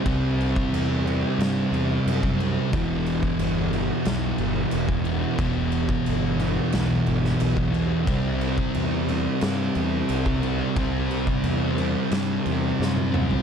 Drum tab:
CC |x-x-x-x-x-x-x-x-|x-x-x-x-x-x-x-x-|x-x-x-x-x-x-x-x-|x-x-x-x-x-x-x-x-|
SD |--------o-------|--------o-------|--------o--o----|--------o-------|
T1 |----------------|----------------|----------------|----------------|
T2 |----------------|----------------|----------------|----------------|
FT |----------------|----------------|----------------|----------------|
BD |o--o---------o--|o--o---------o--|o--o---------o--|o--o---------o--|

CC |x-x-x-x-x-x-----|
SD |--------o---o---|
T1 |-------------o--|
T2 |--------------o-|
FT |---------------o|
BD |o--o------------|